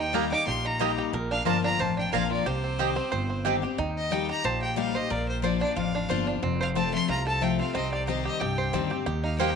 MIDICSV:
0, 0, Header, 1, 6, 480
1, 0, Start_track
1, 0, Tempo, 330396
1, 1652, Time_signature, 4, 2, 24, 8
1, 13882, End_track
2, 0, Start_track
2, 0, Title_t, "Fiddle"
2, 0, Program_c, 0, 110
2, 0, Note_on_c, 0, 79, 99
2, 209, Note_on_c, 0, 82, 98
2, 231, Note_off_c, 0, 79, 0
2, 452, Note_off_c, 0, 82, 0
2, 461, Note_on_c, 0, 86, 127
2, 672, Note_off_c, 0, 86, 0
2, 685, Note_on_c, 0, 84, 100
2, 955, Note_on_c, 0, 82, 96
2, 977, Note_off_c, 0, 84, 0
2, 1432, Note_off_c, 0, 82, 0
2, 1918, Note_on_c, 0, 77, 101
2, 2123, Note_off_c, 0, 77, 0
2, 2129, Note_on_c, 0, 81, 109
2, 2369, Note_off_c, 0, 81, 0
2, 2387, Note_on_c, 0, 82, 118
2, 2626, Note_on_c, 0, 81, 101
2, 2647, Note_off_c, 0, 82, 0
2, 2876, Note_off_c, 0, 81, 0
2, 2887, Note_on_c, 0, 79, 90
2, 3088, Note_off_c, 0, 79, 0
2, 3108, Note_on_c, 0, 77, 102
2, 3340, Note_off_c, 0, 77, 0
2, 3368, Note_on_c, 0, 74, 101
2, 3590, Note_on_c, 0, 72, 91
2, 3612, Note_off_c, 0, 74, 0
2, 5024, Note_off_c, 0, 72, 0
2, 5775, Note_on_c, 0, 75, 99
2, 5988, Note_on_c, 0, 79, 98
2, 6010, Note_off_c, 0, 75, 0
2, 6238, Note_off_c, 0, 79, 0
2, 6255, Note_on_c, 0, 82, 114
2, 6464, Note_on_c, 0, 81, 98
2, 6486, Note_off_c, 0, 82, 0
2, 6710, Note_off_c, 0, 81, 0
2, 6719, Note_on_c, 0, 79, 91
2, 6925, Note_off_c, 0, 79, 0
2, 6953, Note_on_c, 0, 77, 94
2, 7201, Note_on_c, 0, 75, 104
2, 7223, Note_off_c, 0, 77, 0
2, 7421, Note_on_c, 0, 74, 105
2, 7443, Note_off_c, 0, 75, 0
2, 7675, Note_off_c, 0, 74, 0
2, 7684, Note_on_c, 0, 72, 88
2, 7887, Note_off_c, 0, 72, 0
2, 7901, Note_on_c, 0, 74, 82
2, 8137, Note_off_c, 0, 74, 0
2, 8160, Note_on_c, 0, 74, 97
2, 8365, Note_off_c, 0, 74, 0
2, 8378, Note_on_c, 0, 77, 87
2, 9061, Note_off_c, 0, 77, 0
2, 9624, Note_on_c, 0, 77, 101
2, 9717, Note_off_c, 0, 77, 0
2, 9831, Note_on_c, 0, 81, 106
2, 10061, Note_off_c, 0, 81, 0
2, 10085, Note_on_c, 0, 84, 127
2, 10287, Note_off_c, 0, 84, 0
2, 10318, Note_on_c, 0, 82, 103
2, 10544, Note_off_c, 0, 82, 0
2, 10564, Note_on_c, 0, 81, 102
2, 10792, Note_on_c, 0, 79, 92
2, 10813, Note_off_c, 0, 81, 0
2, 11035, Note_off_c, 0, 79, 0
2, 11043, Note_on_c, 0, 77, 87
2, 11245, Note_off_c, 0, 77, 0
2, 11260, Note_on_c, 0, 75, 97
2, 11494, Note_off_c, 0, 75, 0
2, 11511, Note_on_c, 0, 74, 85
2, 11718, Note_off_c, 0, 74, 0
2, 11738, Note_on_c, 0, 75, 83
2, 11973, Note_off_c, 0, 75, 0
2, 11989, Note_on_c, 0, 75, 106
2, 12198, Note_on_c, 0, 79, 90
2, 12220, Note_off_c, 0, 75, 0
2, 12939, Note_off_c, 0, 79, 0
2, 13422, Note_on_c, 0, 77, 86
2, 13626, Note_off_c, 0, 77, 0
2, 13635, Note_on_c, 0, 79, 104
2, 13882, Note_off_c, 0, 79, 0
2, 13882, End_track
3, 0, Start_track
3, 0, Title_t, "Mandolin"
3, 0, Program_c, 1, 25
3, 205, Note_on_c, 1, 58, 91
3, 211, Note_on_c, 1, 67, 84
3, 212, Note_on_c, 1, 75, 86
3, 215, Note_on_c, 1, 79, 99
3, 347, Note_off_c, 1, 58, 0
3, 350, Note_off_c, 1, 67, 0
3, 351, Note_off_c, 1, 75, 0
3, 352, Note_off_c, 1, 79, 0
3, 1161, Note_on_c, 1, 58, 78
3, 1168, Note_on_c, 1, 67, 77
3, 1171, Note_on_c, 1, 75, 105
3, 1172, Note_on_c, 1, 79, 89
3, 1306, Note_off_c, 1, 58, 0
3, 1309, Note_off_c, 1, 67, 0
3, 1311, Note_off_c, 1, 75, 0
3, 1311, Note_off_c, 1, 79, 0
3, 2114, Note_on_c, 1, 58, 94
3, 2118, Note_on_c, 1, 65, 84
3, 2123, Note_on_c, 1, 74, 83
3, 2125, Note_on_c, 1, 82, 104
3, 2263, Note_off_c, 1, 58, 0
3, 2265, Note_off_c, 1, 65, 0
3, 2268, Note_off_c, 1, 74, 0
3, 2269, Note_off_c, 1, 82, 0
3, 3091, Note_on_c, 1, 58, 94
3, 3094, Note_on_c, 1, 65, 89
3, 3097, Note_on_c, 1, 74, 80
3, 3101, Note_on_c, 1, 82, 98
3, 3232, Note_off_c, 1, 58, 0
3, 3234, Note_off_c, 1, 65, 0
3, 3235, Note_off_c, 1, 74, 0
3, 3238, Note_off_c, 1, 82, 0
3, 4058, Note_on_c, 1, 60, 80
3, 4060, Note_on_c, 1, 67, 97
3, 4066, Note_on_c, 1, 75, 93
3, 4069, Note_on_c, 1, 79, 103
3, 4196, Note_off_c, 1, 60, 0
3, 4197, Note_off_c, 1, 67, 0
3, 4200, Note_off_c, 1, 75, 0
3, 4202, Note_off_c, 1, 79, 0
3, 5013, Note_on_c, 1, 60, 83
3, 5017, Note_on_c, 1, 67, 91
3, 5021, Note_on_c, 1, 75, 79
3, 5025, Note_on_c, 1, 79, 99
3, 5154, Note_off_c, 1, 60, 0
3, 5157, Note_off_c, 1, 67, 0
3, 5158, Note_off_c, 1, 75, 0
3, 5160, Note_off_c, 1, 79, 0
3, 13649, Note_on_c, 1, 58, 93
3, 13652, Note_on_c, 1, 75, 90
3, 13653, Note_on_c, 1, 67, 93
3, 13659, Note_on_c, 1, 79, 97
3, 13789, Note_off_c, 1, 58, 0
3, 13790, Note_off_c, 1, 67, 0
3, 13790, Note_off_c, 1, 75, 0
3, 13793, Note_off_c, 1, 79, 0
3, 13882, End_track
4, 0, Start_track
4, 0, Title_t, "Five-string banjo"
4, 0, Program_c, 2, 105
4, 0, Note_on_c, 2, 63, 68
4, 0, Note_on_c, 2, 67, 64
4, 0, Note_on_c, 2, 72, 62
4, 162, Note_off_c, 2, 72, 0
4, 194, Note_off_c, 2, 67, 0
4, 211, Note_on_c, 2, 67, 64
4, 454, Note_off_c, 2, 63, 0
4, 472, Note_on_c, 2, 63, 83
4, 678, Note_off_c, 2, 67, 0
4, 696, Note_on_c, 2, 67, 63
4, 925, Note_off_c, 2, 63, 0
4, 942, Note_on_c, 2, 63, 57
4, 1154, Note_off_c, 2, 67, 0
4, 1171, Note_on_c, 2, 67, 60
4, 1411, Note_off_c, 2, 67, 0
4, 1428, Note_on_c, 2, 67, 63
4, 1605, Note_off_c, 2, 63, 0
4, 1651, Note_off_c, 2, 67, 0
4, 1656, Note_on_c, 2, 70, 71
4, 1904, Note_on_c, 2, 62, 66
4, 2115, Note_off_c, 2, 70, 0
4, 2132, Note_on_c, 2, 70, 63
4, 2370, Note_off_c, 2, 62, 0
4, 2387, Note_on_c, 2, 62, 77
4, 2614, Note_on_c, 2, 72, 64
4, 2818, Note_off_c, 2, 70, 0
4, 2846, Note_off_c, 2, 62, 0
4, 2864, Note_on_c, 2, 62, 51
4, 3092, Note_on_c, 2, 70, 55
4, 3299, Note_off_c, 2, 72, 0
4, 3354, Note_on_c, 2, 65, 53
4, 3527, Note_off_c, 2, 62, 0
4, 3570, Note_off_c, 2, 70, 0
4, 3575, Note_on_c, 2, 67, 67
4, 3577, Note_off_c, 2, 65, 0
4, 3834, Note_on_c, 2, 60, 58
4, 4041, Note_off_c, 2, 67, 0
4, 4058, Note_on_c, 2, 67, 65
4, 4285, Note_off_c, 2, 60, 0
4, 4302, Note_on_c, 2, 60, 82
4, 4527, Note_on_c, 2, 72, 69
4, 4742, Note_off_c, 2, 67, 0
4, 4773, Note_off_c, 2, 60, 0
4, 4790, Note_on_c, 2, 60, 53
4, 5009, Note_on_c, 2, 67, 60
4, 5217, Note_off_c, 2, 72, 0
4, 5258, Note_off_c, 2, 67, 0
4, 5275, Note_on_c, 2, 67, 57
4, 5451, Note_off_c, 2, 60, 0
4, 5498, Note_off_c, 2, 67, 0
4, 5498, Note_on_c, 2, 63, 84
4, 5966, Note_off_c, 2, 63, 0
4, 5983, Note_on_c, 2, 63, 71
4, 6239, Note_on_c, 2, 67, 61
4, 6462, Note_on_c, 2, 72, 65
4, 6665, Note_off_c, 2, 63, 0
4, 6702, Note_off_c, 2, 67, 0
4, 6720, Note_on_c, 2, 67, 54
4, 6919, Note_off_c, 2, 67, 0
4, 6936, Note_on_c, 2, 67, 63
4, 7144, Note_off_c, 2, 72, 0
4, 7188, Note_on_c, 2, 72, 54
4, 7410, Note_off_c, 2, 67, 0
4, 7415, Note_off_c, 2, 72, 0
4, 7416, Note_on_c, 2, 70, 65
4, 7895, Note_on_c, 2, 72, 60
4, 8101, Note_off_c, 2, 70, 0
4, 8154, Note_on_c, 2, 62, 75
4, 8378, Note_on_c, 2, 65, 60
4, 8580, Note_off_c, 2, 72, 0
4, 8625, Note_off_c, 2, 62, 0
4, 8642, Note_on_c, 2, 62, 62
4, 8854, Note_on_c, 2, 72, 64
4, 9061, Note_off_c, 2, 65, 0
4, 9091, Note_off_c, 2, 62, 0
4, 9109, Note_on_c, 2, 62, 59
4, 9334, Note_off_c, 2, 62, 0
4, 9335, Note_off_c, 2, 72, 0
4, 9340, Note_on_c, 2, 60, 88
4, 9597, Note_on_c, 2, 72, 66
4, 9816, Note_off_c, 2, 60, 0
4, 9822, Note_on_c, 2, 60, 68
4, 10071, Note_on_c, 2, 57, 60
4, 10307, Note_on_c, 2, 65, 73
4, 10502, Note_off_c, 2, 60, 0
4, 10556, Note_on_c, 2, 69, 61
4, 10729, Note_off_c, 2, 57, 0
4, 10780, Note_on_c, 2, 57, 58
4, 10984, Note_off_c, 2, 65, 0
4, 11034, Note_on_c, 2, 60, 62
4, 11212, Note_off_c, 2, 69, 0
4, 11237, Note_off_c, 2, 60, 0
4, 11255, Note_on_c, 2, 60, 79
4, 11256, Note_off_c, 2, 57, 0
4, 11516, Note_on_c, 2, 67, 65
4, 11631, Note_off_c, 2, 72, 0
4, 11738, Note_off_c, 2, 67, 0
4, 11738, Note_on_c, 2, 67, 62
4, 11937, Note_off_c, 2, 60, 0
4, 11991, Note_off_c, 2, 67, 0
4, 11991, Note_on_c, 2, 67, 65
4, 12220, Note_off_c, 2, 67, 0
4, 12220, Note_on_c, 2, 67, 66
4, 12464, Note_on_c, 2, 72, 55
4, 12692, Note_on_c, 2, 60, 74
4, 12938, Note_off_c, 2, 67, 0
4, 12944, Note_on_c, 2, 67, 54
4, 13124, Note_off_c, 2, 72, 0
4, 13160, Note_off_c, 2, 67, 0
4, 13166, Note_on_c, 2, 67, 68
4, 13171, Note_off_c, 2, 60, 0
4, 13418, Note_on_c, 2, 63, 61
4, 13650, Note_on_c, 2, 72, 62
4, 13882, Note_off_c, 2, 63, 0
4, 13882, Note_off_c, 2, 67, 0
4, 13882, Note_off_c, 2, 72, 0
4, 13882, End_track
5, 0, Start_track
5, 0, Title_t, "Steel-string acoustic guitar"
5, 0, Program_c, 3, 25
5, 0, Note_on_c, 3, 51, 83
5, 187, Note_on_c, 3, 55, 88
5, 199, Note_on_c, 3, 58, 89
5, 212, Note_on_c, 3, 63, 87
5, 217, Note_on_c, 3, 67, 83
5, 428, Note_off_c, 3, 67, 0
5, 444, Note_off_c, 3, 55, 0
5, 446, Note_on_c, 3, 67, 62
5, 450, Note_off_c, 3, 58, 0
5, 456, Note_off_c, 3, 63, 0
5, 483, Note_on_c, 3, 63, 47
5, 641, Note_off_c, 3, 51, 0
5, 671, Note_off_c, 3, 67, 0
5, 673, Note_on_c, 3, 46, 96
5, 690, Note_off_c, 3, 63, 0
5, 1153, Note_on_c, 3, 55, 98
5, 1167, Note_on_c, 3, 58, 95
5, 1176, Note_on_c, 3, 63, 104
5, 1184, Note_on_c, 3, 67, 96
5, 1599, Note_off_c, 3, 46, 0
5, 1621, Note_off_c, 3, 55, 0
5, 1627, Note_off_c, 3, 58, 0
5, 1632, Note_off_c, 3, 63, 0
5, 1636, Note_off_c, 3, 67, 0
5, 1646, Note_on_c, 3, 46, 89
5, 2109, Note_on_c, 3, 53, 92
5, 2121, Note_on_c, 3, 58, 88
5, 2134, Note_on_c, 3, 62, 103
5, 2146, Note_on_c, 3, 65, 91
5, 2566, Note_off_c, 3, 46, 0
5, 2579, Note_off_c, 3, 53, 0
5, 2585, Note_off_c, 3, 58, 0
5, 2592, Note_off_c, 3, 62, 0
5, 2598, Note_off_c, 3, 65, 0
5, 2605, Note_on_c, 3, 41, 88
5, 3085, Note_on_c, 3, 53, 89
5, 3100, Note_on_c, 3, 58, 96
5, 3109, Note_on_c, 3, 62, 103
5, 3117, Note_on_c, 3, 65, 115
5, 3526, Note_off_c, 3, 41, 0
5, 3548, Note_off_c, 3, 53, 0
5, 3555, Note_off_c, 3, 58, 0
5, 3560, Note_off_c, 3, 62, 0
5, 3564, Note_off_c, 3, 65, 0
5, 3579, Note_on_c, 3, 48, 86
5, 4048, Note_on_c, 3, 51, 83
5, 4056, Note_on_c, 3, 55, 86
5, 4071, Note_on_c, 3, 60, 90
5, 4078, Note_on_c, 3, 67, 83
5, 4275, Note_off_c, 3, 67, 0
5, 4292, Note_on_c, 3, 67, 58
5, 4298, Note_off_c, 3, 51, 0
5, 4301, Note_off_c, 3, 55, 0
5, 4309, Note_off_c, 3, 60, 0
5, 4326, Note_on_c, 3, 60, 50
5, 4493, Note_off_c, 3, 48, 0
5, 4517, Note_off_c, 3, 67, 0
5, 4532, Note_on_c, 3, 43, 88
5, 4534, Note_off_c, 3, 60, 0
5, 5009, Note_on_c, 3, 51, 87
5, 5021, Note_on_c, 3, 55, 94
5, 5033, Note_on_c, 3, 60, 95
5, 5044, Note_on_c, 3, 67, 95
5, 5243, Note_off_c, 3, 67, 0
5, 5258, Note_off_c, 3, 51, 0
5, 5260, Note_on_c, 3, 67, 59
5, 5265, Note_off_c, 3, 55, 0
5, 5270, Note_off_c, 3, 60, 0
5, 5293, Note_on_c, 3, 60, 53
5, 5450, Note_off_c, 3, 43, 0
5, 5482, Note_off_c, 3, 67, 0
5, 5495, Note_on_c, 3, 51, 83
5, 5498, Note_off_c, 3, 60, 0
5, 5969, Note_on_c, 3, 55, 87
5, 5983, Note_on_c, 3, 58, 87
5, 5994, Note_on_c, 3, 63, 89
5, 6003, Note_on_c, 3, 67, 101
5, 6209, Note_off_c, 3, 67, 0
5, 6219, Note_off_c, 3, 55, 0
5, 6226, Note_off_c, 3, 58, 0
5, 6226, Note_on_c, 3, 67, 59
5, 6231, Note_off_c, 3, 63, 0
5, 6260, Note_on_c, 3, 63, 50
5, 6411, Note_off_c, 3, 51, 0
5, 6445, Note_off_c, 3, 67, 0
5, 6452, Note_on_c, 3, 46, 100
5, 6462, Note_off_c, 3, 63, 0
5, 6919, Note_on_c, 3, 55, 84
5, 6932, Note_on_c, 3, 58, 103
5, 6939, Note_on_c, 3, 63, 95
5, 6951, Note_on_c, 3, 67, 91
5, 7162, Note_off_c, 3, 67, 0
5, 7174, Note_off_c, 3, 55, 0
5, 7180, Note_off_c, 3, 58, 0
5, 7180, Note_on_c, 3, 67, 62
5, 7184, Note_off_c, 3, 63, 0
5, 7213, Note_on_c, 3, 63, 54
5, 7370, Note_off_c, 3, 46, 0
5, 7402, Note_off_c, 3, 67, 0
5, 7413, Note_on_c, 3, 46, 87
5, 7418, Note_off_c, 3, 63, 0
5, 7878, Note_on_c, 3, 53, 83
5, 7895, Note_on_c, 3, 58, 87
5, 7901, Note_on_c, 3, 62, 99
5, 7914, Note_on_c, 3, 65, 89
5, 8125, Note_off_c, 3, 65, 0
5, 8133, Note_off_c, 3, 53, 0
5, 8141, Note_off_c, 3, 58, 0
5, 8142, Note_on_c, 3, 65, 67
5, 8144, Note_off_c, 3, 62, 0
5, 8178, Note_on_c, 3, 62, 51
5, 8330, Note_off_c, 3, 46, 0
5, 8362, Note_off_c, 3, 65, 0
5, 8375, Note_on_c, 3, 41, 91
5, 8380, Note_off_c, 3, 62, 0
5, 8842, Note_on_c, 3, 53, 91
5, 8857, Note_on_c, 3, 58, 91
5, 8867, Note_on_c, 3, 62, 111
5, 8875, Note_on_c, 3, 65, 105
5, 9090, Note_off_c, 3, 65, 0
5, 9095, Note_off_c, 3, 53, 0
5, 9102, Note_off_c, 3, 58, 0
5, 9107, Note_off_c, 3, 62, 0
5, 9107, Note_on_c, 3, 65, 66
5, 9137, Note_on_c, 3, 62, 54
5, 9290, Note_off_c, 3, 41, 0
5, 9325, Note_off_c, 3, 65, 0
5, 9334, Note_on_c, 3, 41, 87
5, 9340, Note_off_c, 3, 62, 0
5, 9811, Note_on_c, 3, 53, 90
5, 9822, Note_on_c, 3, 57, 95
5, 9831, Note_on_c, 3, 60, 96
5, 9842, Note_on_c, 3, 65, 94
5, 10051, Note_off_c, 3, 65, 0
5, 10058, Note_off_c, 3, 53, 0
5, 10064, Note_off_c, 3, 57, 0
5, 10068, Note_off_c, 3, 60, 0
5, 10068, Note_on_c, 3, 65, 63
5, 10100, Note_on_c, 3, 60, 42
5, 10249, Note_off_c, 3, 41, 0
5, 10285, Note_off_c, 3, 65, 0
5, 10292, Note_on_c, 3, 48, 88
5, 10300, Note_off_c, 3, 60, 0
5, 10768, Note_on_c, 3, 53, 93
5, 10777, Note_on_c, 3, 57, 93
5, 10790, Note_on_c, 3, 60, 90
5, 10802, Note_on_c, 3, 65, 99
5, 11005, Note_off_c, 3, 65, 0
5, 11016, Note_off_c, 3, 53, 0
5, 11021, Note_off_c, 3, 57, 0
5, 11023, Note_on_c, 3, 65, 59
5, 11027, Note_off_c, 3, 60, 0
5, 11055, Note_on_c, 3, 60, 53
5, 11207, Note_off_c, 3, 48, 0
5, 11241, Note_off_c, 3, 65, 0
5, 11257, Note_off_c, 3, 60, 0
5, 11258, Note_on_c, 3, 48, 92
5, 11728, Note_on_c, 3, 51, 81
5, 11743, Note_on_c, 3, 55, 103
5, 11752, Note_on_c, 3, 60, 90
5, 11763, Note_on_c, 3, 67, 101
5, 12169, Note_off_c, 3, 48, 0
5, 12187, Note_off_c, 3, 51, 0
5, 12194, Note_off_c, 3, 55, 0
5, 12199, Note_off_c, 3, 60, 0
5, 12205, Note_off_c, 3, 67, 0
5, 12218, Note_on_c, 3, 43, 91
5, 12685, Note_on_c, 3, 51, 98
5, 12697, Note_on_c, 3, 55, 94
5, 12709, Note_on_c, 3, 60, 100
5, 12720, Note_on_c, 3, 67, 88
5, 12909, Note_off_c, 3, 67, 0
5, 12926, Note_on_c, 3, 67, 63
5, 12933, Note_off_c, 3, 51, 0
5, 12939, Note_off_c, 3, 55, 0
5, 12945, Note_off_c, 3, 60, 0
5, 12963, Note_on_c, 3, 60, 49
5, 13128, Note_off_c, 3, 43, 0
5, 13151, Note_off_c, 3, 67, 0
5, 13167, Note_on_c, 3, 51, 86
5, 13169, Note_off_c, 3, 60, 0
5, 13634, Note_on_c, 3, 55, 78
5, 13649, Note_on_c, 3, 58, 94
5, 13661, Note_on_c, 3, 63, 91
5, 13668, Note_on_c, 3, 67, 110
5, 13881, Note_off_c, 3, 67, 0
5, 13882, Note_off_c, 3, 51, 0
5, 13882, Note_off_c, 3, 55, 0
5, 13882, Note_off_c, 3, 58, 0
5, 13882, Note_off_c, 3, 63, 0
5, 13882, End_track
6, 0, Start_track
6, 0, Title_t, "Upright bass"
6, 0, Program_c, 4, 32
6, 0, Note_on_c, 4, 39, 95
6, 470, Note_off_c, 4, 39, 0
6, 681, Note_on_c, 4, 34, 96
6, 1428, Note_off_c, 4, 34, 0
6, 1637, Note_on_c, 4, 34, 98
6, 2014, Note_off_c, 4, 34, 0
6, 2118, Note_on_c, 4, 31, 89
6, 2533, Note_off_c, 4, 31, 0
6, 2604, Note_on_c, 4, 33, 92
6, 3017, Note_off_c, 4, 33, 0
6, 3090, Note_on_c, 4, 34, 89
6, 3501, Note_off_c, 4, 34, 0
6, 3571, Note_on_c, 4, 36, 89
6, 4315, Note_off_c, 4, 36, 0
6, 4536, Note_on_c, 4, 31, 100
6, 5279, Note_off_c, 4, 31, 0
6, 5495, Note_on_c, 4, 39, 93
6, 6238, Note_off_c, 4, 39, 0
6, 6458, Note_on_c, 4, 34, 86
6, 7200, Note_off_c, 4, 34, 0
6, 7421, Note_on_c, 4, 34, 93
6, 8161, Note_off_c, 4, 34, 0
6, 8374, Note_on_c, 4, 33, 89
6, 8783, Note_off_c, 4, 33, 0
6, 8857, Note_on_c, 4, 31, 94
6, 9264, Note_off_c, 4, 31, 0
6, 9330, Note_on_c, 4, 29, 92
6, 10074, Note_off_c, 4, 29, 0
6, 10291, Note_on_c, 4, 36, 98
6, 11033, Note_off_c, 4, 36, 0
6, 11257, Note_on_c, 4, 36, 100
6, 11996, Note_off_c, 4, 36, 0
6, 12215, Note_on_c, 4, 36, 90
6, 12621, Note_off_c, 4, 36, 0
6, 12692, Note_on_c, 4, 38, 91
6, 13099, Note_off_c, 4, 38, 0
6, 13168, Note_on_c, 4, 39, 98
6, 13882, Note_off_c, 4, 39, 0
6, 13882, End_track
0, 0, End_of_file